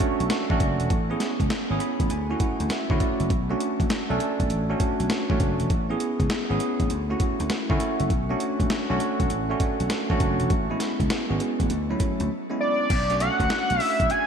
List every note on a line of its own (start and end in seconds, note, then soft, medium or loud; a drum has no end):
0.00 0.50 A3 loud
0.00 0.50 C#4 medium
0.00 0.51 D4 medium
0.00 0.51 F#4 loud
0.00 kick medium
0.00 closed hi-hat medium
0.20 0.28 B1 medium
0.20 closed hi-hat medium
0.30 snare loud
0.30 closed hi-hat medium
0.50 0.58 A1 medium
0.50 0.88 A3 medium
0.50 0.88 C#4 medium
0.50 0.88 D4 medium
0.50 0.88 F#4 medium
0.50 kick loud
0.60 0.75 F#1 loud
0.60 kick medium
0.60 closed hi-hat medium
0.80 0.88 E1 medium
0.80 closed hi-hat medium
0.90 1.13 A1 loud
0.90 kick loud
0.90 closed hi-hat medium
1.10 1.48 B3 medium
1.10 1.48 C#4 medium
1.10 1.48 E4 medium
1.10 1.48 G#4 medium
1.20 snare medium
1.20 closed hi-hat medium
1.40 1.48 C#2 medium
1.40 kick medium
1.40 closed hi-hat soft
1.50 muted slap bass stroke soft
1.50 snare loud
1.50 closed hi-hat medium
1.70 1.78 G#1 medium
1.70 2.08 B3 medium
1.70 2.08 C#4 medium
1.70 2.08 E4 medium
1.70 2.08 G#4 medium
1.80 2.08 B5 medium
1.80 closed hi-hat medium
2.00 2.08 A1 medium
2.00 kick medium
2.00 closed hi-hat medium
2.10 2.33 D2 loud
2.10 2.38 G#5 medium
2.10 closed hi-hat medium
2.30 2.68 A3 medium
2.30 2.68 C#4 medium
2.30 2.68 E4 medium
2.30 2.68 F#4 medium
2.40 2.68 F#5 medium
2.40 kick medium
2.40 closed hi-hat medium
2.60 2.68 D2 medium
2.60 closed hi-hat medium
2.70 2.98 E5 medium
2.70 snare medium
2.70 closed hi-hat medium
2.90 2.98 D3 medium
2.90 3.28 A3 medium
2.90 3.28 C#4 medium
2.90 3.28 E4 medium
2.90 3.28 F#4 medium
2.90 kick loud
3.00 3.28 D5 medium
3.00 kick medium
3.00 closed hi-hat medium
3.20 3.28 F#1 medium
3.20 closed hi-hat soft
3.30 3.53 B1 loud
3.30 kick loud
3.30 closed hi-hat medium
3.50 3.88 A3 loud
3.50 3.88 C#4 medium
3.50 3.88 D4 medium
3.50 3.88 F#4 loud
3.60 closed hi-hat medium
3.80 3.88 A1 medium
3.80 kick medium
3.80 closed hi-hat soft
3.90 muted slap bass stroke soft
3.90 snare loud
3.90 closed hi-hat medium
4.09 4.18 B1 medium
4.09 4.47 A3 medium
4.09 4.48 C#4 medium
4.09 4.48 D4 medium
4.09 4.48 A4 loud
4.20 closed hi-hat medium
4.40 4.48 B1 medium
4.40 kick medium
4.40 closed hi-hat medium
4.50 4.73 A1 medium
4.50 closed hi-hat medium
4.69 5.07 A3 medium
4.69 5.08 C#4 medium
4.69 5.08 D4 medium
4.69 5.08 F#4 medium
4.80 kick medium
4.80 closed hi-hat medium
5.00 5.08 B1 medium
5.00 closed hi-hat medium
5.10 snare loud
5.10 closed hi-hat medium
5.30 5.38 A1 medium
5.30 5.67 A3 medium
5.30 5.68 C#4 medium
5.30 5.68 D4 medium
5.30 5.68 F#4 medium
5.30 kick loud
5.40 5.55 F#1 medium
5.40 kick medium
5.40 closed hi-hat medium
5.60 5.68 E1 medium
5.60 closed hi-hat medium
5.70 5.93 A1 loud
5.70 kick loud
5.70 closed hi-hat medium
5.89 6.27 B3 medium
5.89 6.28 C#4 medium
5.89 6.28 E4 medium
5.89 6.28 G#4 medium
6.00 closed hi-hat medium
6.20 6.28 C#2 medium
6.20 kick medium
6.20 closed hi-hat soft
6.30 muted slap bass stroke medium
6.30 snare loud
6.30 closed hi-hat medium
6.50 6.58 G#1 medium
6.50 6.88 B3 medium
6.50 6.88 C#4 medium
6.50 6.88 E4 medium
6.50 6.88 G#4 medium
6.60 closed hi-hat medium
6.80 6.88 A1 medium
6.80 kick medium
6.80 closed hi-hat medium
6.90 7.13 D2 loud
6.90 closed hi-hat medium
7.10 7.48 A3 medium
7.10 7.48 C#4 medium
7.10 7.48 E4 medium
7.10 7.48 F#4 loud
7.20 kick medium
7.20 closed hi-hat medium
7.40 7.48 D2 medium
7.40 closed hi-hat medium
7.50 snare loud
7.50 closed hi-hat medium
7.70 7.78 D3 medium
7.70 8.08 A3 medium
7.70 8.08 C#4 medium
7.70 8.08 E4 medium
7.70 8.08 F#4 medium
7.70 kick loud
7.80 closed hi-hat medium
8.00 8.08 F#1 medium
8.00 closed hi-hat medium
8.10 8.33 B1 medium
8.10 kick loud
8.10 closed hi-hat medium
8.30 8.68 A3 loud
8.30 8.68 C#4 medium
8.30 8.68 D4 medium
8.30 8.68 F#4 loud
8.40 closed hi-hat medium
8.60 8.68 A1 medium
8.60 kick medium
8.60 closed hi-hat soft
8.70 snare loud
8.70 closed hi-hat medium
8.89 8.98 B1 medium
8.89 9.27 A3 medium
8.89 9.28 C#4 medium
8.89 9.28 D4 medium
8.89 9.28 F#4 loud
9.00 closed hi-hat medium
9.20 9.28 B1 medium
9.20 kick medium
9.20 closed hi-hat medium
9.30 9.53 A1 medium
9.30 closed hi-hat medium
9.50 9.88 A3 medium
9.50 9.88 C#4 medium
9.50 9.88 D4 medium
9.50 9.88 F#4 medium
9.60 kick medium
9.60 closed hi-hat medium
9.80 9.88 B1 medium
9.80 closed hi-hat medium
9.90 snare loud
9.90 closed hi-hat medium
10.10 10.18 A1 loud
10.10 10.48 A3 medium
10.10 10.48 C#4 medium
10.10 10.48 D4 medium
10.10 10.48 F#4 loud
10.10 kick medium
10.20 10.35 F#1 medium
10.20 kick medium
10.20 closed hi-hat medium
10.40 10.48 E1 medium
10.40 closed hi-hat medium
10.50 10.73 A1 medium
10.50 kick loud
10.50 closed hi-hat medium
10.70 11.08 G#3 medium
10.70 11.08 B3 medium
10.70 11.08 C#4 medium
10.70 11.08 E4 medium
10.80 snare medium
10.80 closed hi-hat medium
11.00 11.08 C#2 medium
11.00 kick medium
11.00 closed hi-hat soft
11.10 muted slap bass stroke soft
11.10 snare loud
11.10 closed hi-hat medium
11.30 11.38 G#1 medium
11.30 11.68 G#3 medium
11.30 11.68 B3 medium
11.30 11.68 C#4 medium
11.30 11.68 F#4 medium
11.40 closed hi-hat medium
11.60 11.68 A1 medium
11.60 kick medium
11.60 closed hi-hat medium
11.70 11.93 D2 medium
11.70 closed hi-hat medium
11.90 12.27 F#3 medium
11.90 12.28 A3 medium
11.90 12.28 C#4 medium
11.90 12.28 E4 medium
12.00 kick medium
12.00 closed hi-hat medium
12.20 12.28 D2 loud
12.20 closed hi-hat medium
12.50 12.88 G#3 medium
12.50 12.88 B3 medium
12.50 12.88 C#4 medium
12.50 12.88 E4 medium
12.60 13.16 D5 loud
12.90 13.28 B1 medium
12.90 kick loud
12.90 closed hi-hat medium
12.90 crash medium
13.10 13.17 A3 medium
13.10 13.17 C#4 medium
13.10 13.17 D4 medium
13.10 13.17 F#4 medium
13.10 closed hi-hat soft
13.20 14.05 A3 medium
13.20 14.05 C#4 medium
13.20 14.06 D4 medium
13.20 14.06 F#4 medium
13.20 13.81 F#5 loud
13.20 closed hi-hat medium
13.40 13.48 D2 medium
13.40 kick medium
13.40 closed hi-hat soft
13.50 snare loud
13.50 closed hi-hat medium
13.70 13.78 B1 medium
13.70 closed hi-hat medium
13.80 14.12 E5 loud
13.80 open hi-hat medium
14.00 14.08 B1 medium
14.00 kick medium
14.00 closed hi-hat medium
14.10 14.27 G#5 loud
14.10 closed hi-hat medium